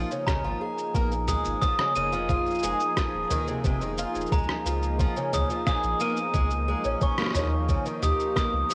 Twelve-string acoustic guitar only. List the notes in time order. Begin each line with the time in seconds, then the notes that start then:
0.11 C#3
0.27 C#3
0.44 F3
0.61 G#4
0.95 A#3
1.28 G#3
1.62 F3
1.79 C#3
1.96 C#3
2.13 F3
2.30 F4
2.63 G#3
2.97 F3
3.31 D#3
3.48 C3
3.65 C3
3.82 D#3
3.99 F4
4.32 G#3
4.66 F3
4.99 F3
5.16 C#3
5.33 C#3
5.50 F3
5.67 G#4
6.00 A#3
6.34 G#3
6.68 G#3
6.85 C#4
7.01 C#4
7.18 A#3
7.35 C#4
7.69 C#3
7.86 D#3
8.02 G4
8.36 A#3
8.69 G3